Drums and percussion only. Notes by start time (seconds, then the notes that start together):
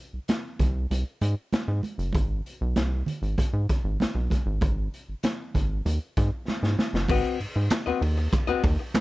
0.28 snare, closed hi-hat, high conga
0.59 kick, closed hi-hat, low conga
0.91 closed hi-hat, muted conga
1.21 closed hi-hat, muted conga
1.53 snare, closed hi-hat, high conga
1.83 closed hi-hat, high conga
1.99 closed hi-hat
2.13 kick, closed hi-hat, muted conga
2.46 closed hi-hat
2.76 snare, closed hi-hat, high conga
3.06 closed hi-hat, low conga
3.23 closed hi-hat
3.38 kick, closed hi-hat, muted conga
3.69 kick, closed hi-hat
4.00 snare, closed hi-hat, high conga
4.30 kick, closed hi-hat, high conga
4.61 kick, closed hi-hat, muted conga
4.94 closed hi-hat
5.23 snare, closed hi-hat, high conga
5.54 kick, closed hi-hat, low conga
5.86 closed hi-hat, muted conga
6.17 kick, closed hi-hat, muted conga
6.48 snare, high conga
6.64 snare
6.79 snare, high conga
6.95 snare
7.08 kick, crash, muted conga
7.25 ride
7.41 open hi-hat, ride
7.70 snare, clap, hi-hat pedal, ride, high conga
8.02 open hi-hat, ride
8.17 ride
8.33 kick, hi-hat pedal, ride, muted conga
8.63 kick, open hi-hat, ride, muted conga
8.94 snare, clap, hi-hat pedal, ride, high conga